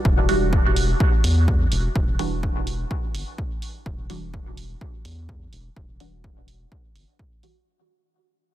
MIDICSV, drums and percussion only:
0, 0, Header, 1, 2, 480
1, 0, Start_track
1, 0, Key_signature, 1, "minor"
1, 0, Tempo, 476190
1, 50, Time_signature, 4, 2, 24, 8
1, 8612, End_track
2, 0, Start_track
2, 0, Title_t, "Drums"
2, 51, Note_on_c, 9, 36, 101
2, 152, Note_off_c, 9, 36, 0
2, 291, Note_on_c, 9, 46, 73
2, 392, Note_off_c, 9, 46, 0
2, 531, Note_on_c, 9, 36, 103
2, 632, Note_off_c, 9, 36, 0
2, 771, Note_on_c, 9, 46, 81
2, 872, Note_off_c, 9, 46, 0
2, 1011, Note_on_c, 9, 36, 105
2, 1112, Note_off_c, 9, 36, 0
2, 1251, Note_on_c, 9, 46, 76
2, 1352, Note_off_c, 9, 46, 0
2, 1491, Note_on_c, 9, 36, 112
2, 1592, Note_off_c, 9, 36, 0
2, 1731, Note_on_c, 9, 46, 71
2, 1831, Note_off_c, 9, 46, 0
2, 1971, Note_on_c, 9, 36, 101
2, 2072, Note_off_c, 9, 36, 0
2, 2211, Note_on_c, 9, 46, 68
2, 2311, Note_off_c, 9, 46, 0
2, 2451, Note_on_c, 9, 36, 95
2, 2552, Note_off_c, 9, 36, 0
2, 2691, Note_on_c, 9, 46, 73
2, 2791, Note_off_c, 9, 46, 0
2, 2931, Note_on_c, 9, 36, 103
2, 3032, Note_off_c, 9, 36, 0
2, 3171, Note_on_c, 9, 46, 71
2, 3272, Note_off_c, 9, 46, 0
2, 3411, Note_on_c, 9, 36, 104
2, 3512, Note_off_c, 9, 36, 0
2, 3651, Note_on_c, 9, 46, 69
2, 3752, Note_off_c, 9, 46, 0
2, 3891, Note_on_c, 9, 36, 97
2, 3992, Note_off_c, 9, 36, 0
2, 4131, Note_on_c, 9, 46, 70
2, 4232, Note_off_c, 9, 46, 0
2, 4371, Note_on_c, 9, 36, 96
2, 4472, Note_off_c, 9, 36, 0
2, 4611, Note_on_c, 9, 46, 73
2, 4712, Note_off_c, 9, 46, 0
2, 4851, Note_on_c, 9, 36, 95
2, 4952, Note_off_c, 9, 36, 0
2, 5091, Note_on_c, 9, 46, 69
2, 5192, Note_off_c, 9, 46, 0
2, 5331, Note_on_c, 9, 36, 103
2, 5432, Note_off_c, 9, 36, 0
2, 5571, Note_on_c, 9, 46, 70
2, 5672, Note_off_c, 9, 46, 0
2, 5811, Note_on_c, 9, 36, 100
2, 5912, Note_off_c, 9, 36, 0
2, 6051, Note_on_c, 9, 46, 69
2, 6152, Note_off_c, 9, 46, 0
2, 6291, Note_on_c, 9, 36, 99
2, 6392, Note_off_c, 9, 36, 0
2, 6531, Note_on_c, 9, 46, 71
2, 6632, Note_off_c, 9, 46, 0
2, 6771, Note_on_c, 9, 36, 103
2, 6872, Note_off_c, 9, 36, 0
2, 7011, Note_on_c, 9, 46, 73
2, 7112, Note_off_c, 9, 46, 0
2, 7251, Note_on_c, 9, 36, 101
2, 7352, Note_off_c, 9, 36, 0
2, 7491, Note_on_c, 9, 46, 71
2, 7592, Note_off_c, 9, 46, 0
2, 8612, End_track
0, 0, End_of_file